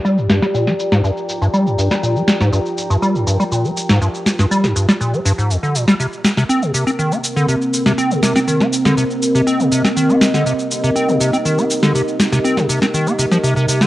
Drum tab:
SH |xxxxxxxxxxxxxxxx|xxxxxxxxxxxxxxxx|xxxxxxxxxxxxxxxx|xxxxxxxxxxxxxxxx|
SD |--oo-o-o-------o|--oo-----------o|--oo-o-o-------o|--oo-----------o|

SH |xxxxxxxxxxxxxxxx|xxxxxxxxxxxxxxxx|xxxxxxxxxxxxxxxx|
SD |--oo-o-o-------o|--oo-----------o|--oo-o-o---o---o|